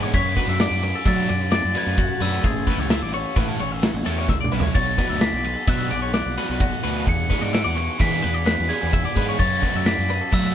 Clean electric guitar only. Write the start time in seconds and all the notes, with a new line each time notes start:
0.03 C#5
0.14 C#5
0.37 B4
0.49 E5
0.61 D5
0.84 B4
0.95 A4
1.07 E5
1.29 D5
1.40 C#5
1.52 D5
1.76 B4
1.98 F#4
2.21 B4
2.45 G#4
2.67 B4
2.80 C#5
2.91 E5
3.02 D5
3.14 C#5
3.37 B4
3.49 A4
3.60 C#5
3.72 E5
3.84 C#5
4.06 A4
4.18 C#5
4.30 E5
4.41 D5
4.52 B4
4.63 C#5
4.75 C#5
4.98 B4
5.10 E5
5.21 D5
5.44 B4
5.57 A4
5.68 E5
5.91 D5
6.02 C#5
6.14 D5
6.38 B4
6.61 F#4
6.83 B4
7.06 G#4
7.30 B4
7.41 D5
7.53 E5
7.64 D5
7.75 C#5
7.99 B4
8.11 G#4
8.23 B4
8.34 D5
8.46 B4
8.70 G#4
8.81 B4
8.93 E5
9.05 D5
9.17 B4
9.29 C#5
9.40 C#5
9.64 B4
9.76 E5
9.87 D5
10.10 B4
10.21 A4
10.33 E5